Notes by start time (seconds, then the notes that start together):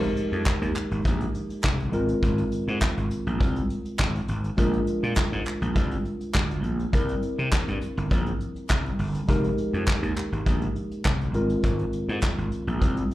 Already playing: G#3 D#4 G4 A#4
0.03 closed hi-hat
0.17 closed hi-hat
0.32 F2, closed hi-hat
0.46 kick, snare, clap
0.62 D#2, closed hi-hat
0.75 clap, closed hi-hat
0.91 G#1, closed hi-hat
1.05 A#1, kick, closed hi-hat
1.20 closed hi-hat
1.35 closed hi-hat
1.50 closed hi-hat
1.64 C2, kick, snare, clap
1.80 closed hi-hat
1.92 G#1 G#3 C4 F4 A#4, closed hi-hat
2.08 closed hi-hat
2.23 G#1, kick, closed hi-hat
2.38 closed hi-hat
2.52 closed hi-hat
2.68 G#2, closed hi-hat
2.82 kick, snare, clap
2.97 G#1, closed hi-hat
3.11 closed hi-hat
3.27 A#1, closed hi-hat
3.41 C2, kick, closed hi-hat
3.56 closed hi-hat
3.70 closed hi-hat
3.85 closed hi-hat
3.99 G#1, kick, snare, clap
4.15 closed hi-hat
4.28 G#1, closed hi-hat
4.44 closed hi-hat
4.57 A#1 G#3 D4 F4 A#4, kick, closed hi-hat
4.73 closed hi-hat
4.87 closed hi-hat
5.03 A#2, closed hi-hat
5.17 kick, snare, clap
5.32 G#2, closed hi-hat
5.46 clap, closed hi-hat
5.62 A#1, closed hi-hat
5.76 C2, kick, closed hi-hat
5.91 closed hi-hat
6.05 closed hi-hat
6.21 closed hi-hat
6.34 D2, kick, snare, clap
6.51 closed hi-hat
6.64 A#1, closed hi-hat
6.79 closed hi-hat
6.93 C2 G3 C4 E4 A#4, kick, closed hi-hat
7.09 closed hi-hat
7.22 closed hi-hat
7.39 C3, closed hi-hat
7.52 kick, snare, clap
7.68 G2, closed hi-hat
7.81 closed hi-hat
7.97 G1, closed hi-hat
8.11 A#1, kick, closed hi-hat
8.26 closed hi-hat
8.40 closed hi-hat
8.56 closed hi-hat
8.70 C2, kick, snare, clap
8.86 closed hi-hat
8.99 G1, open hi-hat
9.15 closed hi-hat
9.28 F1 G#3 D#4 G4 A#4, kick, closed hi-hat
9.44 closed hi-hat
9.58 closed hi-hat
9.73 F2, closed hi-hat
9.87 kick, snare, clap
10.03 D#2, closed hi-hat
10.17 clap, closed hi-hat
10.32 G#1, closed hi-hat
10.46 A#1, kick, closed hi-hat
10.62 closed hi-hat
10.76 closed hi-hat
10.91 closed hi-hat
11.05 C2, kick, snare, clap
11.21 closed hi-hat
11.34 G#1 G#3 C4 F4 A#4, closed hi-hat
11.50 closed hi-hat
11.64 G#1, kick, closed hi-hat
11.79 closed hi-hat
11.93 closed hi-hat
12.09 G#2, closed hi-hat
12.23 kick, snare, clap
12.38 G#1, closed hi-hat
12.52 closed hi-hat
12.67 A#1, closed hi-hat
12.82 C2, kick, closed hi-hat
12.97 closed hi-hat
13.11 closed hi-hat